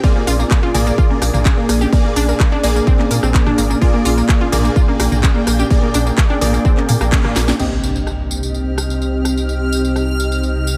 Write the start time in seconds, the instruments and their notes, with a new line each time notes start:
0.04 supersaw synth A#2 A#3 G#4 D5, ambient pad A#3 D4 G#4, synth pluck F4, kick, tambourine
0.16 synth pluck A#3
0.27 analog synth bass A#1, synth pluck F4, open hi-hat, tambourine, high conga
0.39 synth pluck A#3, tambourine
0.51 synth pluck A#3, kick, cross-stick, clap, tambourine
0.63 synth pluck F4, high conga
0.74 analog synth bass A#1, supersaw synth A#2 A#3 G#4 D5, synth pluck A#3, mid tom, open hi-hat, tambourine
0.87 synth pluck A#3, tambourine
0.98 synth pluck F4, kick, tambourine
1.10 synth pluck A#3, high conga
1.22 analog synth bass A#1, synth pluck A#3, cross-stick, open hi-hat, tambourine
1.34 analog synth bass A#1, synth pluck A#3, mid tom, tambourine
1.45 synth pluck G#4, kick, clap, tambourine, high conga
1.57 synth pluck A#3
1.69 analog synth bass A#1, synth pluck A#3, cross-stick, open hi-hat, tambourine
1.81 synth pluck G4, tambourine, high conga
1.93 supersaw synth A#2 A#3 G#4 D5, synth pluck A#3, kick, tambourine
2.05 synth pluck A#3
2.16 analog synth bass A#1, synth pluck D4, open hi-hat, tambourine, high conga
2.28 synth pluck A#3, tambourine
2.40 synth pluck A#3, kick, cross-stick, clap, tambourine
2.52 synth pluck D4, high conga
2.63 analog synth bass A#1, supersaw synth A#2 A#3 G#4 D5, synth pluck A#3, open hi-hat, tambourine
2.76 synth pluck A#3, tambourine
2.87 synth pluck C4, kick, tambourine
2.99 synth pluck A#3, clap, high conga
3.11 analog synth bass A#2, synth pluck A#3, open hi-hat, tambourine
3.23 analog synth bass A#1, synth pluck C4, cross-stick, tambourine
3.34 synth pluck A#3, kick, clap, tambourine, high conga
3.46 synth pluck D4, cross-stick, mid tom
3.58 analog synth bass G#1, synth pluck A#3, open hi-hat, tambourine
3.70 synth pluck A#3, tambourine, high conga
3.82 supersaw synth A#2 A#3 G#4 D5, synth pluck F4, ambient pad G5, kick, tambourine
3.94 synth pluck A#3
4.05 analog synth bass A#1, synth pluck F4, open hi-hat, tambourine, high conga
4.17 synth pluck A#3, tambourine
4.29 synth pluck A#3, kick, cross-stick, clap, tambourine
4.41 synth pluck F4, high conga
4.52 analog synth bass A#1, supersaw synth A#2 A#3 G#4 D5, synth pluck A#3, mid tom, open hi-hat, tambourine
4.65 synth pluck A#3, tambourine
4.76 synth pluck F4, kick, tambourine
4.88 synth pluck A#3, high conga
5.00 analog synth bass A#1, synth pluck A#3, cross-stick, open hi-hat, tambourine
5.12 analog synth bass A#1, synth pluck A#3, mid tom, tambourine
5.23 synth pluck G#4, kick, clap, tambourine, high conga
5.35 synth pluck A#3
5.47 analog synth bass A#1, synth pluck A#3, cross-stick, open hi-hat, tambourine
5.59 synth pluck G4, tambourine, high conga
5.70 supersaw synth A#2 A#3 G#4 D5, synth pluck A#3, kick, tambourine
5.83 synth pluck A#3
5.94 analog synth bass A#1, synth pluck D4, open hi-hat, tambourine, high conga
6.06 synth pluck A#3, tambourine
6.18 synth pluck A#3, kick, cross-stick, clap, tambourine
6.30 synth pluck D4, high conga
6.41 analog synth bass A#1, supersaw synth A#2 A#3 G#4 D5, synth pluck A#3, mid tom, open hi-hat, tambourine
6.54 synth pluck A#3, tambourine
6.65 synth pluck C4, kick, tambourine
6.77 synth pluck A#3, clap, high conga
6.89 analog synth bass A#2, synth pluck A#3, mid tom, open hi-hat, tambourine
7.01 analog synth bass A#1, synth pluck A#3, cross-stick, tambourine
7.12 synth pluck A#3, kick, clap, tambourine, high conga
7.24 synth pluck A#3, cross-stick, mid tom
7.36 analog synth bass A#1, synth pluck A#3, snare, open hi-hat, tambourine
7.48 synth pluck A#3, snare, tambourine, high conga
7.59 analog synth bass C2, ambient pad C3 C4 D#4 G4, supersaw synth C3 C4 G4 D#5, synth texture F6, crash, tambourine, impact
7.84 tambourine
7.96 tambourine
8.07 cross-stick, tambourine
8.31 tambourine
8.43 tambourine
8.54 tambourine
8.78 cross-stick, tambourine
8.90 tambourine
9.02 tambourine
9.25 cross-stick, tambourine
9.37 tambourine
9.49 tambourine
9.73 tambourine
9.85 tambourine
9.96 cross-stick, tambourine
10.20 tambourine
10.32 tambourine
10.43 tambourine
10.67 tambourine